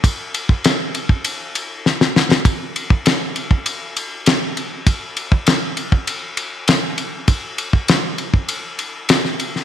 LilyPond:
\new DrumStaff \with { instrumentName = "Drums" } \drummode { \time 4/4 \tempo 4 = 99 <bd cymr>8 cymr16 bd16 <cymr sn>8 cymr16 bd16 cymr8 cymr8 sn16 sn16 sn16 sn16 | <bd cymr>8 cymr16 bd16 <cymr sn>8 cymr16 bd16 cymr8 cymr8 <cymr sn>8 cymr8 | <bd cymr>8 cymr16 bd16 <cymr sn>8 cymr16 bd16 cymr8 cymr8 <cymr sn>8 cymr8 | <bd cymr>8 cymr16 bd16 <cymr sn>8 cymr16 bd16 cymr8 cymr8 <cymr sn>16 sn16 cymr16 sn16 | }